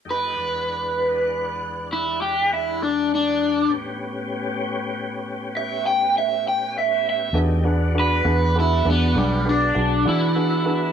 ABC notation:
X:1
M:12/8
L:1/8
Q:3/8=66
K:Emix
V:1 name="Grand piano"
z12 | z12 | [DFGB] [DFGB] [DFGB] [DFGB] [DFGB] [DFGB] [DFGd] [DFGB] [DFGB] [DFGd] [DFGB] [DFGB] |]
V:2 name="Overdriven electric guitar"
B6 E =G E D D2 | z6 e =g e g e e | z2 B2 E B, =G, D2 E3 |]
V:3 name="Tonewheel organ"
[=F,,A,^D=G] [E,,^G,=D^f]8- [E,,G,Df]3 | [A,,B,C=G]12 | [A,^D=G] [B,=DF]8- [B,DF]3 |]
V:4 name="Fingered electric bass" clef=bass
z12 | z12 | E,,3 E,,2 E,, B,,,2 B,,, E,3 |]